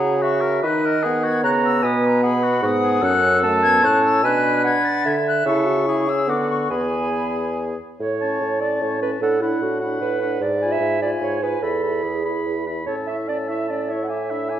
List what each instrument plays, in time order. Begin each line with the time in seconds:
Already playing: bassoon C#3, french horn F#4, oboe G#4, clarinet F#5, flute A#5
0.21 oboe F#4, clarinet E5, flute C#6
0.41 oboe A#4
0.62 bassoon D#3, french horn D#4, oboe B4, clarinet D#5, flute F#6
0.85 oboe A#4
1.04 french horn B3, oboe G#4, clarinet F#5
1.23 oboe F#4, flute G#6
1.43 bassoon C#3, oboe F#4, clarinet A#5, flute F#6
1.65 flute E6
1.83 bassoon B2, oboe B4, clarinet G#5, flute D#6
2.06 flute A#5
2.23 oboe G#4, clarinet F#5, flute B5
2.42 oboe F#4
2.62 bassoon G#2, french horn B3, oboe F#4, flute D#6
2.83 oboe G#4
3.02 bassoon F#2, french horn C#4, oboe A4, flute F#6
3.44 french horn A3, clarinet A5
3.62 french horn B3, flute G#6
3.83 bassoon A2, french horn C#4, oboe C#5, flute F#6
4.04 flute E6
4.24 bassoon B2, french horn D4, oboe B4, clarinet G#5, flute F#6
4.64 clarinet F#5, flute G#6
4.85 flute A6
5.05 bassoon D3, clarinet E5, flute G#6
5.27 flute F#6
5.46 bassoon C#3, french horn E4, oboe A4, flute C#6
5.66 french horn F#4
5.86 french horn E4, oboe G#4
6.08 french horn C#4, flute E6
6.28 bassoon D3, french horn B3, oboe F#4, clarinet F#5, flute D6
6.49 flute C#6
6.70 bassoon E2, french horn B3, oboe G#4, clarinet G#5, flute B5
7.99 bassoon A2, clarinet C#5
8.21 french horn C#4, oboe A5, flute C#6
8.41 bassoon A2
8.61 french horn C#4, clarinet D5, oboe A5, flute C#6
8.81 bassoon A2, clarinet C#5
9.00 french horn C#4, clarinet B4, oboe A5, flute C#6
9.21 bassoon A2, french horn D4, clarinet A4, oboe F#5, flute B5
9.41 french horn D4, clarinet E4, oboe F#5, flute B5
9.62 bassoon A2, clarinet F#4
9.80 french horn D4, oboe F#5, flute B5
10.01 bassoon A2, clarinet B4
10.22 french horn D4, oboe F#5, flute B5
10.41 bassoon G#2, clarinet D5
10.62 french horn F4, oboe G#5, flute B5
10.72 clarinet E5
10.80 bassoon G#2
11.02 french horn F4, clarinet D5, oboe G#5, flute B5
11.21 bassoon G#2, clarinet C#5
11.43 french horn F4, clarinet B4, oboe G#5, flute B5
11.62 bassoon E2, french horn E4, clarinet A4, oboe B5, flute B5
11.83 french horn E4, oboe B5, flute B5
12.04 bassoon E2, clarinet G#4
12.25 french horn E4, oboe B5, flute B5
12.46 bassoon E2
12.67 french horn E4, oboe B5, flute B5
12.86 bassoon A2, french horn C#4, clarinet C#5, oboe A5, flute E6
13.07 french horn E4, clarinet E5, oboe E5, flute C#6
13.28 french horn C#4, clarinet D5, oboe A5, flute E6
13.48 french horn E4, oboe E5, clarinet E5, flute C#6
13.68 french horn C#4, clarinet D5, oboe A5, flute E6
13.89 french horn E4, clarinet C#5, oboe E5, flute C#6
14.04 clarinet F#5
14.08 french horn E4, clarinet E5, oboe G#5, flute D6
14.30 french horn D4, oboe E5, flute B5
14.49 french horn E4, oboe G#5, flute D6